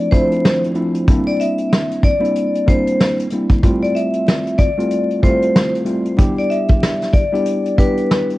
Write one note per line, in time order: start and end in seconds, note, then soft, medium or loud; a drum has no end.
0.00 0.10 E4 medium
0.00 closed hi-hat soft
0.11 0.71 F3 medium
0.11 0.72 A3 medium
0.11 0.72 C4 medium
0.11 0.72 D4 medium
0.11 0.72 E4 loud
0.11 0.60 C5 medium
0.11 kick medium
0.11 closed hi-hat medium
0.32 closed hi-hat medium
0.45 snare loud
0.64 closed hi-hat medium
0.74 1.05 F3 medium
0.74 1.05 A3 medium
0.74 1.05 C4 medium
0.74 1.05 D4 medium
0.74 1.06 E4 medium
0.74 closed hi-hat medium
0.95 closed hi-hat medium
1.08 2.12 G3 medium
1.08 2.12 A#3 medium
1.08 2.13 C4 medium
1.08 2.13 D4 medium
1.08 2.13 E4 loud
1.08 kick loud
1.08 closed hi-hat loud
1.27 1.38 D5 medium
1.27 closed hi-hat medium
1.40 2.00 E5 medium
1.40 closed hi-hat medium
1.58 closed hi-hat medium
1.72 snare loud
1.91 closed hi-hat medium
2.03 2.64 D5 medium
2.03 kick medium
2.03 closed hi-hat medium
2.20 2.63 G3 medium
2.20 2.63 A#3 medium
2.20 2.63 C4 medium
2.20 2.63 D4 medium
2.20 2.63 E4 loud
2.24 closed hi-hat medium
2.35 closed hi-hat medium
2.55 closed hi-hat soft
2.66 3.27 G3 medium
2.66 3.27 A#3 medium
2.66 3.27 C4 medium
2.66 3.27 D4 medium
2.66 3.27 E4 medium
2.66 3.16 C5 medium
2.66 kick medium
2.66 closed hi-hat medium
2.87 closed hi-hat medium
3.00 snare loud
3.19 closed hi-hat medium
3.30 3.62 G3 medium
3.30 3.62 A#3 medium
3.30 3.62 C4 medium
3.30 3.62 D4 medium
3.30 3.62 E4 medium
3.30 closed hi-hat medium
3.50 kick loud
3.50 closed hi-hat medium
3.63 4.67 G3 medium
3.63 4.67 A3 medium
3.63 4.68 C4 medium
3.63 4.68 E4 medium
3.63 4.68 F4 loud
3.63 kick loud
3.63 closed hi-hat loud
3.83 3.94 D5 medium
3.83 closed hi-hat medium
3.95 4.55 E5 medium
3.95 closed hi-hat medium
4.13 closed hi-hat medium
4.28 snare loud
4.47 closed hi-hat medium
4.58 5.18 D5 medium
4.58 kick medium
4.58 closed hi-hat medium
4.77 5.19 G3 medium
4.77 5.19 A3 medium
4.77 5.20 C4 medium
4.77 5.20 E4 medium
4.77 5.20 F4 loud
4.77 closed hi-hat medium
4.90 closed hi-hat medium
5.10 closed hi-hat soft
5.22 5.82 G3 medium
5.22 5.82 A3 medium
5.22 5.83 C4 medium
5.22 5.83 E4 medium
5.22 5.83 F4 loud
5.22 5.71 C5 medium
5.22 kick medium
5.22 closed hi-hat medium
5.42 closed hi-hat medium
5.56 snare loud
5.75 closed hi-hat medium
5.85 6.16 G3 medium
5.85 6.16 A3 medium
5.85 6.16 C4 medium
5.85 6.16 E4 medium
5.85 6.16 F4 medium
5.85 closed hi-hat medium
6.05 closed hi-hat medium
6.17 7.22 G3 medium
6.17 7.22 B3 medium
6.17 7.22 D4 medium
6.17 7.22 E4 medium
6.17 7.23 G4 loud
6.17 kick loud
6.17 closed hi-hat loud
6.38 6.49 D5 medium
6.38 closed hi-hat medium
6.50 7.10 E5 medium
6.50 closed hi-hat medium
6.68 kick medium
6.68 closed hi-hat medium
6.83 snare loud
7.02 snare soft
7.02 closed hi-hat medium
7.13 7.73 D5 medium
7.13 kick medium
7.13 closed hi-hat medium
7.32 7.74 G3 medium
7.32 7.75 B3 medium
7.32 7.75 D4 medium
7.32 7.75 E4 medium
7.32 7.75 G4 medium
7.32 closed hi-hat medium
7.46 closed hi-hat medium
7.66 closed hi-hat soft
7.77 8.37 G3 medium
7.77 8.38 B3 medium
7.77 8.38 D4 medium
7.77 8.38 E4 medium
7.77 8.38 G4 loud
7.77 8.26 B4 medium
7.77 kick medium
7.77 closed hi-hat medium
7.97 closed hi-hat medium
8.11 snare loud
8.30 closed hi-hat medium